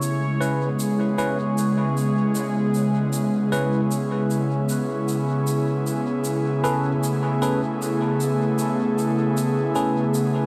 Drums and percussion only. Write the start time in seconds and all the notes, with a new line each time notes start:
0.02 shaker
0.41 shaker
0.79 shaker
1.18 shaker
1.58 shaker
1.97 shaker
2.35 shaker
2.74 shaker
3.13 shaker
3.52 shaker
3.91 shaker
4.30 shaker
4.69 shaker
5.08 shaker
5.47 shaker
5.87 shaker
6.24 shaker
6.64 shaker
7.04 shaker
7.42 shaker
7.82 shaker
8.20 shaker
8.58 shaker
8.98 shaker
9.37 shaker
9.75 shaker
10.14 shaker